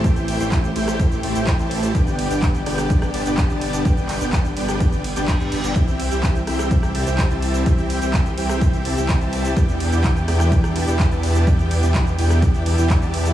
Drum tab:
RD |x-x-x-x-x-x-x-x-|x-x-x-x-x-x-x-x-|x-x-x-x-x-x-x-x-|x-x-x-x-x-x-x-x-|
HH |xxoxxxoxxxoxxxox|xxoxxxoxxxoxxxox|xxoxxxoxxxoxxxox|xxoxxxoxxxoxxxox|
SH |xx-xxx-xxx-xxx-x|xx-xxx-xxx-xxx-x|xx-xxx-xxx-xxx-x|xx-xxx-xxx-xxx-x|
CP |----x-------x---|----x-------x---|--x-x-------x---|----x-------x---|
SD |-------r--------|------rr-r------|-------r--------|------rr-r------|
BD |o---o---o---o---|o---o---o---o---|o---o---o---o---|o---o---o---o---|

RD |x-x-x-x-x-x-x-x-|x-x-x-x-x-x-x-x-|x-x-x-x-x-x-x-x-|
HH |xxoxxxoxxxoxxxox|xxoxxxoxxxoxxxox|xxoxxxoxxxoxxxox|
SH |xx-xxx-xxx-xxx-x|xx-xxx-xxx-xxx-x|xx-xxx-xxx-xxx-x|
CP |----x-------x---|----x-------x---|----x-------x---|
SD |-------r--------|------rr-r------|-------r--------|
BD |o---o---o---o---|o---o---o---o---|o---o---o---o---|